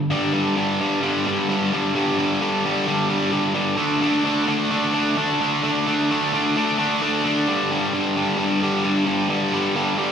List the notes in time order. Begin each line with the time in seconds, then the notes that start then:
0.10 G2 D3 G3
0.33 G2 D3 G3
0.56 G2 D3 G3
0.80 G2 D3 G3
1.02 G2 D3 G3
1.26 G2 D3 G3
1.49 G2 D3 G3
1.73 G2 D3 G3
1.95 G2 D3 G3
2.19 G2 D3 G3
2.41 G2 D3 G3
2.65 G2 D3 G3
2.87 G2 D3 G3
3.09 G2 D3 G3
3.32 G2 D3 G3
3.55 G2 D3 G3
3.77 D3 A3 D4
4.01 D3 A3 D4
4.24 D3 A3 D4
4.48 D3 A3 D4
4.71 D3 A3 D4
4.94 D3 A3 D4
5.17 D3 A3 D4
5.40 D3 A3 D4
5.63 D3 A3 D4
5.87 D3 A3 D4
6.11 D3 A3 D4
6.34 D3 A3 D4
6.57 D3 A3 D4
6.79 D3 A3 D4
7.02 D3 A3 D4
7.24 D3 A3 D4
7.48 G2 D3 G3
7.71 G2 D3 G3
7.93 G2 D3 G3
8.17 G2 D3 G3
8.38 G2 D3 G3
8.62 G2 D3 G3
8.84 G2 D3 G3
9.06 G2 D3 G3
9.29 G2 D3 G3
9.53 G2 D3 G3
9.76 G2 D3 G3
9.98 G2 D3 G3